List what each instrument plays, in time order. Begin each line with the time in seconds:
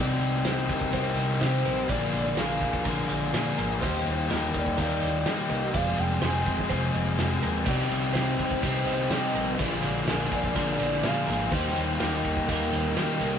Already playing: fingered electric bass C2, overdriven electric guitar C3 G3
0.00 overdriven electric guitar C4 D#4 G4, clean electric guitar D5
0.10 snare
0.20 fingered electric bass C2, ride
0.44 fingered electric bass C2, overdriven electric guitar G3 C4 D#4, clean electric guitar C5, snare, ride
0.48 overdriven electric guitar G4
0.69 fingered electric bass C2, soft synth lead A#4, kick, ride
0.81 kick
0.93 fingered electric bass C2, overdriven electric guitar C3 G3 C4 D#4 G4, soft synth lead A#4, clean electric guitar C5, kick, ride
1.16 fingered electric bass C2, clean electric guitar D#5, ride
1.29 snare
1.41 fingered electric bass C3, overdriven electric guitar G3 C4 D#4 G4, soft synth lead C5, snare, ride
1.65 fingered electric bass A#1, clean electric guitar A#4, ride
1.89 fingered electric bass A#1, overdriven electric guitar A#2 D3 F3 A#3 D4 G#4, soft synth lead D5, clean electric guitar D5, kick, ride
2.01 snare
2.12 fingered electric bass A#1, ride
2.37 fingered electric bass A#1, overdriven electric guitar F3 A#3 D4 G#4, clean electric guitar A#4, soft synth lead F5, snare, ride
2.61 fingered electric bass A#1, kick, ride
2.73 kick
2.84 fingered electric bass A#1, overdriven electric guitar A#2 D3 F3 A#3 D4 G#4, clean electric guitar A#4, kick, ride
3.09 fingered electric bass A#1, clean electric guitar D5, ride
3.31 fingered electric bass A#2, overdriven electric guitar F3 A#3 D4 G#4, snare, ride
3.58 fingered electric bass G#1, clean electric guitar A#4, ride
3.81 fingered electric bass D#2, overdriven electric guitar D#3 G3 A#3 D#4 G4, clean electric guitar C5, kick, ride
4.06 fingered electric bass D#2, ride
4.29 fingered electric bass D#2, overdriven electric guitar G3 A#3 D#4 G4, clean electric guitar A#4, snare, ride
4.54 fingered electric bass D#2, soft synth lead D5, kick, ride
4.66 kick
4.77 fingered electric bass D#2, overdriven electric guitar D#3 G3 A#3 D#4 G4, clean electric guitar A#4, soft synth lead D5, kick, ride
5.01 fingered electric bass D#2, clean electric guitar D#5, ride
5.26 fingered electric bass D#3, overdriven electric guitar G3 A#3 D#4 G4, soft synth lead D#5, snare, ride
5.49 fingered electric bass C2, clean electric guitar A#4, ride
5.74 fingered electric bass F1, overdriven electric guitar F2 C3 F3 G#3 C4 G#4, clean electric guitar D5, soft synth lead F5, kick, ride
5.86 snare
5.98 fingered electric bass F1, soft synth lead G5, ride
6.22 fingered electric bass F1, overdriven electric guitar F3 G#3 C4 G#4, clean electric guitar C5, soft synth lead G#5, snare, ride
6.46 fingered electric bass F1, kick, ride
6.58 kick
6.69 fingered electric bass F1, overdriven electric guitar F2 C3 F3 G#3 C4 G#4, clean electric guitar C5, kick, ride
6.94 fingered electric bass F1, clean electric guitar D#5, ride
7.18 fingered electric bass F2, overdriven electric guitar F3 G#3 C4 G#4, snare, ride
7.42 fingered electric bass D#2, clean electric guitar A#4, ride
7.65 fingered electric bass C2, overdriven electric guitar C3 D#3 G3 C4 D#4 G4, clean electric guitar D5, kick, ride
7.79 snare
7.91 fingered electric bass C2, ride
8.13 fingered electric bass C2, overdriven electric guitar D#3 G3 C4 D#4, clean electric guitar C5, snare, ride
8.17 overdriven electric guitar G4
8.38 fingered electric bass C2, soft synth lead C5, kick, ride
8.51 kick
8.62 fingered electric bass C2, overdriven electric guitar C3 D#3 G3 C4 D#4 G4, clean electric guitar C5, soft synth lead C5, kick, ride
8.86 fingered electric bass C2, overdriven electric guitar G3 C4 G4, clean electric guitar D#5, ride
8.99 snare
9.10 fingered electric bass C3, overdriven electric guitar D#3 G3 C4 D#4 G4, soft synth lead D#5, snare, ride
9.34 fingered electric bass A#1, clean electric guitar A#4, ride
9.58 fingered electric bass A#1, overdriven electric guitar A#2 D3 F3 G#3 A#3 D4 G#4, clean electric guitar D5, kick, ride
9.62 overdriven electric guitar F4
9.82 fingered electric bass A#1, ride
10.06 fingered electric bass A#1, overdriven electric guitar F3 G#3 A#3 D4 F4 G#4, clean electric guitar A#4, snare, ride
10.32 fingered electric bass A#1, soft synth lead D5, kick, ride
10.44 kick
10.54 fingered electric bass A#1, overdriven electric guitar A#2 D3 F3 G#3 A#3 D4 F4 G#4, clean electric guitar A#4, soft synth lead D5, kick, ride
10.78 fingered electric bass A#1, overdriven electric guitar G#3 D4 F4, clean electric guitar D5, ride
10.92 snare
11.03 fingered electric bass A#2, overdriven electric guitar F3 G#3 A#3 D4 F4 G#4, soft synth lead F5, snare, ride
11.27 fingered electric bass G#1, clean electric guitar A#4, ride
11.50 fingered electric bass D#2, overdriven electric guitar D#3 G3 A#3 D#4 G4, clean electric guitar C5, kick, ride
11.65 snare
11.76 fingered electric bass D#2, ride
11.98 fingered electric bass D#2, overdriven electric guitar D#3 G3 A#3 D#4, clean electric guitar A#4, snare, ride
12.02 overdriven electric guitar G4
12.24 fingered electric bass D#2, soft synth lead A#4, kick, ride
12.37 kick
12.47 fingered electric bass D#2, overdriven electric guitar D#3 G3 A#3 D#4 G4, clean electric guitar A#4, soft synth lead A#4, kick, ride
12.71 fingered electric bass D#2, overdriven electric guitar A#3 D#4 G4, clean electric guitar D#5, ride
12.96 overdriven electric guitar D#3 G3 A#3 D#4 G4, fingered electric bass D#3, snare, ride
13.20 fingered electric bass C2, clean electric guitar A#4, ride